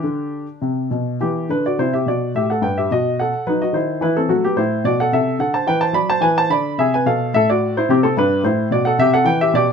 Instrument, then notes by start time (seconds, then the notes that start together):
grand piano
Already playing: D4 G4
0.03 D3
0.62 C3
0.91 B2
1.21 E3 B3 G4
1.49 D3 D4 B4
1.66 F#4 D5
1.78 C3 E4 C5
1.93 G4 E5
2.06 B2 F#4 D5
2.35 A2 G4 E5
2.50 A4 F#5
2.62 G2 B4 G5
2.78 G4 E5
2.91 B2 F#4 D#5
3.19 A4 F#5
3.47 F#3 D#4 B4
3.62 F#4 D#5
3.73 D#3 E4 C5
4.01 E3 E4 B4
4.17 C4 A4
4.29 F#3 A3 F#4
4.44 B3 G4
4.56 A2 E4 C5
4.84 B2 F#4 D5
5.00 A4 F#5
5.12 C3 A4 E5
5.39 D3 A4 F#5
5.54 C5 A5
5.67 E3 B4 G5
5.81 C5 A5
5.93 F#3 D5 B5
6.10 C5 A5
6.21 E3 B4 G#5
6.38 C5 A5
6.50 D3 D5 B5
6.78 C3 G#4 E5
6.94 B4 G#5
7.06 B2 A4 F5
7.34 A2 A4 E5
7.50 F#4 D5
7.77 E4 C5
7.89 C3 C4 G4
8.03 C4 A4
8.17 G2 D4 B4
8.43 A2 E4 C5
8.71 B2 F#4 D5
8.85 A4 F#5
8.98 C3 G4 E5
9.14 A4 F#5
9.24 E3 B4 G5
9.41 G4 E5
9.53 B2 G4 D5